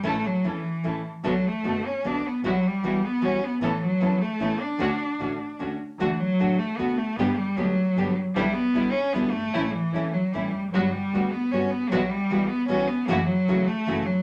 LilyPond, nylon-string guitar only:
\new Staff \with { instrumentName = "Nylon-string guitar" } { \time 3/4 \key d \major \tempo 4 = 152 <e a cis' e'>8 r8 <e a cis' e'>8 r8 <e a cis' e'>8 r8 | <b, d a b fis'>8 r8 <b, d a b fis'>8 r8 <b, d a b fis'>8 r8 | <b, e g b fis'>8 r8 <b, e g b fis'>8 r8 <b, e g b fis'>8 r8 | <e b cis' e'>8 r8 <e b cis' e'>8 r8 <e b cis' e'>8 r8 |
<d a cis' fis'>8 r8 <d a cis' fis'>8 r8 <d a cis' fis'>8 r8 | <d a d' fis'>8 r8 <d a d' fis'>8 r8 <d a d' fis'>8 r8 | <b, d g b g'>8 r8 <b, d g b g'>8 r8 <b, d g b g'>8 r8 | <b, d g b e'>8 r8 <b, d g b e'>8 r8 <b, d g b e'>8 r8 |
<e a cis' e'>8 r8 <e a cis' e'>8 r8 <e a cis' e'>8 r8 | <g b fis'>8 r8 <g b fis'>8 r8 <g b fis'>8 r8 | <b, e g b fis'>8 r8 <b, e g b fis'>8 r8 <b, e g b fis'>8 r8 | <cis e a cis' fis'>8 r8 <cis e a cis' fis'>8 r8 <cis e a cis' fis'>8 r8 | }